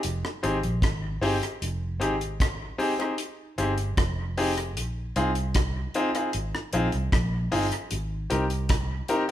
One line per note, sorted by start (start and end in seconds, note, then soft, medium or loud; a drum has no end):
0.03 0.22 F1 medium
0.03 closed hi-hat loud
0.25 cross-stick medium
0.43 0.61 G#1 medium
0.43 0.56 C4 medium
0.43 0.56 D#4 medium
0.43 0.56 G4 medium
0.43 0.56 G#4 loud
0.43 closed hi-hat medium
0.63 0.80 A#1 medium
0.63 closed hi-hat medium
0.82 1.17 G#1 medium
0.82 kick loud
0.82 cross-stick loud
0.82 closed hi-hat medium
1.21 1.39 G1 medium
1.21 1.35 C4 loud
1.21 1.35 D#4 medium
1.21 1.35 G4 medium
1.21 1.35 G#4 loud
1.21 open hi-hat medium
1.43 closed hi-hat medium
1.62 2.01 F1 medium
1.62 closed hi-hat medium
2.00 2.70 G#1 loud
2.00 2.13 C4 medium
2.00 2.14 D#4 medium
2.00 2.14 G4 medium
2.00 2.14 G#4 loud
2.00 closed hi-hat medium
2.21 closed hi-hat medium
2.40 kick loud
2.40 cross-stick loud
2.40 closed hi-hat loud
2.78 2.92 C4 loud
2.78 2.92 D#4 medium
2.78 2.92 G4 medium
2.78 2.92 G#4 loud
2.78 open hi-hat soft
2.99 3.12 C4 medium
2.99 3.12 D#4 medium
2.99 3.12 G4 medium
2.99 3.12 G#4 medium
2.99 closed hi-hat medium
3.18 closed hi-hat medium
3.58 3.93 G1 medium
3.58 3.71 C4 loud
3.58 3.71 D#4 medium
3.58 3.71 G4 medium
3.58 3.71 G#4 loud
3.58 closed hi-hat medium
3.78 closed hi-hat medium
3.97 4.77 F1 loud
3.97 kick medium
3.97 cross-stick loud
3.97 closed hi-hat medium
4.37 4.50 C4 medium
4.37 4.50 D#4 medium
4.37 4.50 G4 medium
4.37 4.50 G#4 loud
4.37 open hi-hat medium
4.58 closed hi-hat medium
4.77 5.12 A#1 loud
4.77 closed hi-hat loud
5.16 5.85 C2 loud
5.16 5.29 C4 medium
5.16 5.29 D#4 medium
5.16 5.29 F4 medium
5.16 5.29 G#4 loud
5.16 closed hi-hat medium
5.35 closed hi-hat medium
5.55 kick loud
5.55 cross-stick loud
5.55 closed hi-hat loud
5.94 6.08 C4 loud
5.94 6.08 D#4 loud
5.94 6.08 F4 medium
5.94 6.08 G#4 loud
5.94 closed hi-hat medium
6.15 6.27 C4 medium
6.15 6.28 D#4 medium
6.15 6.28 F4 medium
6.15 6.28 G#4 medium
6.15 closed hi-hat medium
6.33 6.52 G#1 medium
6.33 closed hi-hat medium
6.55 cross-stick medium
6.73 6.91 A#1 loud
6.73 6.86 C4 loud
6.73 6.86 D#4 medium
6.73 6.87 F4 medium
6.73 6.87 G#4 loud
6.73 closed hi-hat medium
6.92 7.10 C2 medium
6.92 closed hi-hat soft
7.12 7.47 A#1 loud
7.12 kick loud
7.12 cross-stick loud
7.12 closed hi-hat medium
7.52 7.70 G1 medium
7.52 7.65 C4 loud
7.52 7.65 D#4 loud
7.52 7.65 F4 medium
7.52 7.65 G#4 loud
7.52 open hi-hat medium
7.72 closed hi-hat medium
7.91 8.26 G#1 medium
7.91 closed hi-hat medium
8.30 9.01 C2 loud
8.30 8.43 C4 medium
8.30 8.43 D#4 medium
8.30 8.43 G4 medium
8.30 8.44 A#4 medium
8.30 closed hi-hat medium
8.50 closed hi-hat medium
8.69 kick loud
8.69 cross-stick loud
8.69 closed hi-hat loud
9.08 9.22 C4 medium
9.08 9.22 D#4 loud
9.08 9.22 G4 medium
9.08 9.23 A#4 loud
9.08 closed hi-hat medium